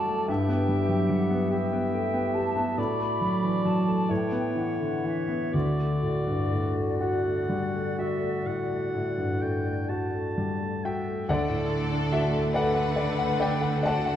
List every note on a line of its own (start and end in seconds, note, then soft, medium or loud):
0.00 0.24 F#2 medium
0.00 0.31 E3 soft
0.00 0.31 F#3 soft
0.00 0.31 G3 soft
0.00 0.08 A3 soft
0.00 0.28 F#4 medium
0.00 0.24 A4 soft
0.00 0.31 A4 soft
0.00 0.24 D5 soft
0.00 0.28 A5 medium
0.08 0.28 A3 soft
0.28 2.74 G2 medium
0.28 2.79 E4 medium
0.28 1.47 G4 medium
0.28 1.47 E5 soft
0.28 1.09 G5 medium
0.49 0.81 B3 soft
0.69 1.01 G3 soft
0.89 1.09 F#3 soft
1.08 1.43 G3 soft
1.08 1.50 F#5 medium
1.31 1.64 B3 soft
1.50 1.84 G4 soft
1.50 2.80 G4 soft
1.50 2.79 E5 soft
1.50 2.35 G5 medium
1.72 2.06 B3 soft
1.93 2.14 A3 soft
2.14 2.48 B3 soft
2.34 2.69 G4 soft
2.34 2.77 A5 medium
2.56 2.77 B3 soft
2.78 4.06 A2 soft
2.78 4.11 D4 medium
2.78 4.12 F#4 soft
2.78 4.12 D5 soft
2.78 3.65 B5 medium
2.99 3.34 A3 soft
3.21 3.56 F#3 soft
3.43 3.65 E3 soft
3.64 4.01 F#3 soft
3.64 4.09 A5 medium
3.88 4.10 A3 soft
4.09 5.50 A2 soft
4.09 5.21 E4 soft
4.09 5.54 B4 soft
4.09 5.55 C#5 soft
4.09 4.56 G5 medium
4.32 4.70 B3 soft
4.56 4.94 E3 soft
4.56 5.04 F#5 medium
4.80 5.04 D3 soft
5.04 5.44 E3 soft
5.04 5.54 E5 medium
5.28 5.53 B3 soft
5.53 8.42 D2 soft
5.53 10.96 F#4 soft
5.53 10.58 F#4 soft
5.53 6.84 D5 soft
5.53 10.81 D5 soft
5.79 6.18 A3 soft
6.03 6.42 A2 soft
6.27 6.52 G2 soft
6.51 6.91 A2 soft
6.76 7.16 A3 soft
7.01 7.40 F#4 soft
7.01 7.94 F#5 soft
7.26 7.64 A3 soft
7.49 7.74 G3 soft
7.74 8.13 A3 soft
7.98 8.37 F#4 soft
7.98 8.48 E5 soft
8.20 8.60 A3 soft
8.46 8.85 A2 soft
8.46 9.43 F#5 soft
8.70 9.09 A3 soft
8.95 9.33 A2 soft
9.18 9.42 G2 soft
9.42 9.81 A2 soft
9.42 9.90 G5 soft
9.66 10.04 A3 soft
9.89 10.28 F#4 soft
9.89 10.86 A5 soft
10.13 10.52 A3 soft
10.38 10.61 G3 soft
10.61 10.99 A3 soft
10.85 11.21 F#4 soft
10.85 11.29 E5 soft
10.85 11.26 G5 medium
11.08 11.29 A3 soft
11.28 14.16 D2 medium
11.28 14.16 D3 medium
11.28 12.50 D3 medium
11.28 14.16 A3 medium
11.28 12.50 A4 medium
11.28 12.09 A4 medium
11.28 12.51 D5 medium
11.28 12.09 D5 medium
11.28 12.08 F#5 medium
11.50 11.83 A2 soft
11.69 12.03 A3 soft
11.91 12.24 D4 soft
12.12 12.46 F#4 soft
12.12 12.52 E5 medium
12.32 12.55 A4 medium
12.54 13.82 A4 medium
12.54 13.38 A4 medium
12.54 13.81 B4 medium
12.54 12.89 D5 medium
12.54 13.84 F#5 medium
12.54 12.73 F#5 medium
12.75 13.10 F#5 medium
12.96 13.32 D5 medium
13.19 13.54 F#5 medium
13.40 13.75 D5 medium
13.40 13.82 G5 medium
13.61 13.85 F#5 medium
13.83 14.16 F#4 medium
13.83 14.16 A4 medium
13.83 13.85 D5 medium
13.83 14.16 D5 medium
13.83 14.16 F#5 medium
13.83 14.04 F#5 medium
13.83 14.16 A5 medium
14.06 14.16 F#5 medium